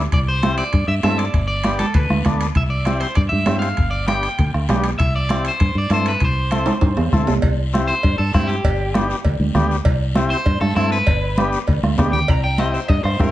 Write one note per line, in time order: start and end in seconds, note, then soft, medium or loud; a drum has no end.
0.12 0.61 C2 medium
0.12 0.19 D5 medium
0.12 bombo low medium
0.12 high conga soft
0.12 high timbale medium
0.12 long guiro medium
0.29 0.56 C5 medium
0.42 0.64 C4 medium
0.42 0.64 E4 medium
0.42 0.64 G4 medium
0.42 bombo rim medium
0.42 high conga medium
0.42 high timbale medium
0.42 short guiro medium
0.58 0.88 D5 medium
0.58 high timbale medium
0.58 short guiro medium
0.73 0.86 G2 medium
0.73 bombo low medium
0.73 high conga soft
0.73 high timbale medium
0.73 long guiro medium
0.88 1.00 G2 medium
0.88 0.93 E5 loud
1.03 1.28 G2 medium
1.03 1.25 C4 medium
1.03 1.25 E4 medium
1.03 1.25 A4 medium
1.03 1.18 E5 loud
1.03 bombo rim medium
1.03 high conga medium
1.03 high timbale medium
1.03 low timbale medium
1.03 short guiro medium
1.18 1.46 D5 medium
1.18 high timbale medium
1.18 short guiro medium
1.34 1.83 G1 medium
1.34 bombo low medium
1.34 high conga soft
1.34 high timbale medium
1.34 long guiro medium
1.48 1.77 D5 medium
1.64 1.86 B3 medium
1.64 1.86 D4 medium
1.64 1.86 G4 medium
1.64 bombo rim medium
1.64 high conga medium
1.64 high timbale medium
1.64 short guiro medium
1.79 1.95 A4 medium
1.79 high conga medium
1.79 high timbale medium
1.79 short guiro medium
1.94 2.07 D2 medium
1.94 2.25 B4 medium
1.94 bombo low medium
1.94 high conga soft
1.94 high timbale medium
1.94 long guiro medium
2.10 2.22 D2 medium
2.10 bombo rim medium
2.10 high conga medium
2.25 2.50 D2 medium
2.25 2.47 B3 medium
2.25 2.47 D4 medium
2.25 2.47 A4 medium
2.25 bombo low medium
2.25 bombo rim medium
2.25 high conga medium
2.25 high timbale medium
2.25 short guiro medium
2.41 high timbale medium
2.41 short guiro medium
2.55 3.04 C2 medium
2.55 2.62 E5 medium
2.55 bombo low medium
2.55 high conga soft
2.55 high timbale medium
2.55 long guiro medium
2.70 2.99 D5 medium
2.85 3.07 C4 medium
2.85 3.07 E4 medium
2.85 3.08 G4 medium
2.85 bombo rim medium
2.85 high conga medium
2.85 high timbale medium
2.85 short guiro medium
3.00 3.15 C5 medium
3.00 high timbale medium
3.00 short guiro medium
3.15 3.29 G2 medium
3.15 3.21 D5 medium
3.15 bombo low medium
3.15 high conga soft
3.15 high timbale medium
3.15 long guiro medium
3.29 3.45 G2 medium
3.29 3.59 E5 medium
3.29 high conga medium
3.46 3.72 G2 medium
3.46 3.69 C4 medium
3.46 3.69 E4 medium
3.46 3.69 G4 medium
3.46 bombo rim medium
3.46 high conga medium
3.46 high timbale medium
3.46 low timbale medium
3.46 short guiro medium
3.59 3.89 F5 medium
3.59 high timbale medium
3.59 short guiro medium
3.77 4.27 G1 medium
3.77 bombo low medium
3.77 high conga soft
3.77 high timbale medium
3.77 long guiro medium
3.91 4.06 D5 medium
4.07 4.29 B3 medium
4.07 4.29 D4 medium
4.07 4.29 G4 medium
4.07 4.50 G5 medium
4.07 bombo rim medium
4.07 high conga medium
4.07 high timbale medium
4.07 short guiro medium
4.23 high timbale medium
4.23 short guiro medium
4.38 4.51 D2 medium
4.38 bombo low medium
4.38 high conga soft
4.38 high timbale medium
4.38 long guiro medium
4.54 4.66 D2 medium
4.54 bombo rim medium
4.69 4.94 B1 medium
4.69 4.90 B3 medium
4.69 4.90 D4 medium
4.69 4.91 G4 medium
4.69 bombo rim medium
4.69 high conga medium
4.69 high timbale medium
4.69 low timbale medium
4.69 short guiro medium
4.84 high timbale medium
4.84 short guiro medium
4.99 5.48 C2 medium
4.99 5.13 E5 loud
4.99 bombo low medium
4.99 high conga soft
4.99 high timbale medium
4.99 long guiro medium
5.16 5.43 D5 medium
5.29 5.51 C4 medium
5.29 5.51 E4 medium
5.29 5.52 G4 medium
5.29 bombo rim medium
5.29 high conga medium
5.29 high timbale medium
5.29 short guiro medium
5.45 5.78 C5 medium
5.45 high timbale medium
5.45 short guiro medium
5.60 5.73 G2 medium
5.60 bombo low medium
5.60 high conga soft
5.60 high timbale medium
5.60 long guiro medium
5.75 5.88 G2 medium
5.75 5.91 D5 medium
5.90 6.15 G2 medium
5.90 6.12 C4 medium
5.90 6.12 E4 medium
5.90 6.13 A4 medium
5.90 6.06 C5 medium
5.90 bombo rim medium
5.90 high conga medium
5.90 high timbale medium
5.90 short guiro medium
6.06 6.23 B4 medium
6.06 high timbale medium
6.06 short guiro medium
6.20 6.70 C2 medium
6.20 bombo low medium
6.20 high conga soft
6.20 high timbale medium
6.20 long guiro medium
6.25 7.10 C5 medium
6.51 6.73 C4 medium
6.51 6.73 E4 medium
6.51 6.73 A4 medium
6.51 bombo rim medium
6.51 high conga medium
6.51 high timbale medium
6.51 short guiro medium
6.66 high conga medium
6.66 high timbale medium
6.66 short guiro medium
6.81 6.94 G2 medium
6.81 bombo low medium
6.81 high conga soft
6.81 high timbale medium
6.81 long guiro medium
6.97 7.11 E2 medium
6.97 bombo rim medium
6.97 low timbale medium
7.13 7.26 D2 medium
7.13 7.34 C4 medium
7.13 7.34 E4 medium
7.13 7.34 A4 medium
7.13 bombo low medium
7.13 bombo rim medium
7.13 high conga medium
7.13 short guiro medium
7.27 7.42 C2 medium
7.27 low timbale medium
7.27 short guiro medium
7.42 7.92 C2 medium
7.42 bombo low medium
7.42 cowbell loud
7.42 high conga soft
7.42 long guiro medium
7.73 7.94 C4 medium
7.73 7.95 E4 medium
7.73 7.95 G4 medium
7.73 bombo rim medium
7.73 high conga medium
7.73 short guiro medium
7.88 8.17 C5 loud
7.88 short guiro medium
8.03 8.16 G2 medium
8.03 bombo low medium
8.03 cowbell medium
8.03 high conga soft
8.03 long guiro medium
8.18 8.31 G2 medium
8.18 8.33 A4 medium
8.33 8.59 G2 medium
8.33 8.56 C4 medium
8.33 8.49 E4 medium
8.33 8.56 E4 medium
8.33 8.56 G4 medium
8.33 bombo low medium
8.33 bombo rim medium
8.33 high conga medium
8.33 short guiro medium
8.47 9.07 G4 medium
8.47 short guiro medium
8.64 9.13 G1 medium
8.64 bombo low medium
8.64 cowbell loud
8.64 high conga soft
8.64 long guiro medium
8.94 9.16 B3 medium
8.94 9.16 D4 medium
8.94 9.16 G4 medium
8.94 bombo rim medium
8.94 high conga medium
8.94 short guiro medium
9.10 short guiro medium
9.25 9.37 D2 medium
9.25 bombo low medium
9.25 cowbell medium
9.25 high conga soft
9.25 long guiro medium
9.40 9.52 D2 medium
9.40 high conga medium
9.54 9.79 D2 medium
9.54 9.76 B3 medium
9.54 9.77 D4 medium
9.54 9.77 G4 medium
9.54 bombo rim medium
9.54 high conga medium
9.54 low conga medium
9.54 short guiro medium
9.71 short guiro medium
9.85 10.34 C2 medium
9.85 bombo low medium
9.85 cowbell loud
9.85 high conga soft
9.85 long guiro medium
10.15 10.37 C4 medium
10.15 10.37 E4 medium
10.15 10.37 G4 medium
10.15 bombo rim medium
10.15 high conga loud
10.15 short guiro medium
10.30 10.60 C5 loud
10.30 short guiro medium
10.46 10.58 G2 medium
10.46 bombo low medium
10.46 cowbell medium
10.46 high conga soft
10.46 long guiro medium
10.61 10.74 G2 medium
10.61 10.76 A4 medium
10.61 bombo rim medium
10.61 high conga medium
10.76 11.01 G2 medium
10.76 10.98 C4 medium
10.76 10.91 E4 medium
10.76 10.98 E4 medium
10.76 10.99 A4 medium
10.76 bombo rim medium
10.76 high conga medium
10.76 short guiro medium
10.92 11.51 B4 medium
10.92 short guiro medium
11.06 11.56 G1 medium
11.06 bombo low medium
11.06 cowbell loud
11.06 high conga soft
11.06 long guiro medium
11.36 11.59 B3 medium
11.36 11.59 D4 medium
11.36 11.59 G4 medium
11.36 bombo rim medium
11.36 high conga medium
11.36 short guiro medium
11.52 short guiro medium
11.67 11.80 D2 medium
11.67 bombo low medium
11.67 cowbell medium
11.67 high conga soft
11.67 long guiro medium
11.83 11.95 D2 medium
11.83 bombo rim medium
11.83 high conga medium
11.98 12.23 D2 medium
11.98 12.19 B3 medium
11.98 12.20 D4 medium
11.98 12.20 G4 loud
11.98 bombo low medium
11.98 bombo rim medium
11.98 high conga medium
11.98 low timbale medium
11.98 short guiro medium
12.13 12.30 G5 medium
12.13 low conga loud
12.13 short guiro medium
12.28 12.77 C2 medium
12.28 12.44 A#5 medium
12.28 bombo low medium
12.28 cowbell loud
12.28 high conga soft
12.28 long guiro medium
12.44 12.59 G5 medium
12.58 12.80 C4 medium
12.58 12.80 E4 medium
12.58 12.80 G4 medium
12.58 12.74 D#5 medium
12.58 bombo rim medium
12.58 high conga medium
12.58 short guiro medium
12.74 12.88 C5 medium
12.74 short guiro medium
12.88 13.02 G2 medium
12.88 13.03 D#5 medium
12.88 bombo low medium
12.88 cowbell medium
12.88 high conga soft
12.88 long guiro medium
13.04 13.17 G2 medium
13.04 13.21 C5 medium
13.04 bombo rim medium
13.19 13.31 G2 medium
13.19 13.31 C4 medium
13.19 13.31 E4 medium
13.19 13.31 G4 medium
13.19 13.31 A#4 medium
13.19 bombo low medium
13.19 bombo rim medium
13.19 high conga medium
13.19 short guiro medium